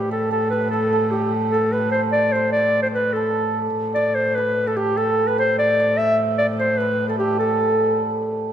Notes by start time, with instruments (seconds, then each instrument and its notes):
Already playing: viola da gamba A2, clarinet G4, hammered dulcimer G4 B4 D5
0.11 hammered dulcimer A4, clarinet A4
0.31 hammered dulcimer A4, clarinet A4
0.50 clarinet B4, hammered dulcimer B4
0.70 clarinet A4, hammered dulcimer A4
0.93 hammered dulcimer A4
1.11 clarinet G4, hammered dulcimer G4
1.51 clarinet A4, hammered dulcimer A4
1.72 clarinet B4, hammered dulcimer B4
1.92 clarinet C5, hammered dulcimer C5
2.12 clarinet D5, hammered dulcimer D5
2.33 clarinet C5, hammered dulcimer C5
2.52 clarinet D5
2.56 hammered dulcimer D5
2.83 clarinet C5
2.87 hammered dulcimer C5
2.93 clarinet B4, hammered dulcimer B4
3.13 clarinet A4, hammered dulcimer A4
3.78 viola da gamba A2
3.94 clarinet D5, hammered dulcimer D5
4.15 clarinet C5
4.35 clarinet B4, hammered dulcimer B4
4.67 hammered dulcimer A4, clarinet A4
4.77 hammered dulcimer G4, clarinet G4
4.97 clarinet A4, hammered dulcimer A4
5.27 clarinet B4, hammered dulcimer B4
5.38 hammered dulcimer C5, clarinet C5
5.59 clarinet D5, hammered dulcimer D5
5.80 hammered dulcimer D5
5.97 clarinet E5, hammered dulcimer E5
6.38 clarinet D5, hammered dulcimer D5
6.58 clarinet C5, hammered dulcimer C5
6.78 clarinet B4, hammered dulcimer B4
7.09 clarinet A4, hammered dulcimer A4
7.18 clarinet G4, hammered dulcimer G4
7.39 clarinet A4, hammered dulcimer A4